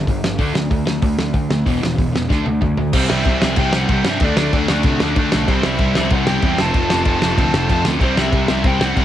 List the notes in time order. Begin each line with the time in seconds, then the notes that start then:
0.07 G1 G2 D3, kick, open hi-hat
0.23 G1 G2 D3, snare
0.38 D2 D3 A3 D4, kick, open hi-hat
0.54 D2 D3 A3, snare
0.70 D2 D3 A3, kick, open hi-hat
0.86 D2 D3 A3, snare
1.02 D2 D3 A3, kick, open hi-hat
1.19 D2 D3 A3, snare
1.34 D2 D3 A3, kick, open hi-hat
1.50 D2 D3 A3, snare
1.66 E1 E2 B2 E3, kick, open hi-hat
1.81 E1 E2 B2, snare
1.95 E1 E2 B2, kick, open hi-hat
2.00 E2
2.13 E1 E2 B2, snare
2.29 D2 D3 A3 D4, kick, snare
2.45 D2 D3 A3, high tom
2.61 D2 D3 A3, kick, mid tom
2.77 D2 D3 A3, floor tom
2.93 C2 C3 E3 G3 C4 G4 C5, kick, crash
3.09 C2 C3 G3 C4 E5, snare
3.25 C2 C3 G3 C4, kick, crash
3.42 C2 C3 G3 C4 E5, snare
3.56 C2 C3 G3 C4 G5, kick, crash
3.73 C3 E3 G3 C4 G4 F#5, snare
3.89 C2 C3 E3 G3 C4, kick, crash
3.93 G4
4.05 G2 C3 G3 C4, snare
4.10 E5
4.20 D2 D3 A3 D4, kick, crash
4.24 F#4 D5
4.37 D2 D3 A3 D4, snare
4.53 D2 D3 A3 D4, kick, crash
4.68 D2 D3 A3 D4, snare
4.83 C3 D3 A3 D4, kick, crash
5.00 D2 D3 A3 D4 F#4, snare
5.16 D3 A3 D4, kick, crash
5.20 F#4
5.32 B1 D3 A3 D4, snare
5.47 C2 C3 E3 G3 C4 C5, kick, crash
5.51 E4
5.63 C2 C3 G3 C4 E5, snare
5.78 C2 C3 G3 C4, kick, crash
5.95 C2 C3 G3 C4 E5, snare
6.10 C2 C3 G3 C4 F#5, kick, crash
6.27 C3 E3 G3 C4 E4 G5, snare
6.42 E2 C3 E3 G3 C4, kick, crash
6.46 E4
6.58 F1 F2 C3 F3 A3 C4 F4 A5, snare
6.74 F1 F2 C3 F3, kick, crash
6.90 F1 F2 C3 F3, snare
7.05 F1 F2 C3 F3, kick, crash
7.22 F1 F2 C3 F3, snare
7.38 D2 F2 C3 F3 A3 C4 F4, kick, crash
7.53 F1 F2 C3 F3 A3 C4 F4, snare
7.69 F2 C3 F3, kick, crash
7.85 D2 F2 C3 F3, snare
8.00 C2 C3 G3 C4 E4, kick, crash
8.05 C5
8.15 C2 C3 G3 C4 E5, snare
8.31 C2 C3 G3 C4, kick, crash
8.48 C2 C3 G3 C4 E5, snare
8.64 C2 C3 G3 C4 G5, kick, crash
8.79 C3 G3 C4 E4, snare
8.85 F#5
8.96 C2 C3 G3 C4, kick, crash
9.00 E4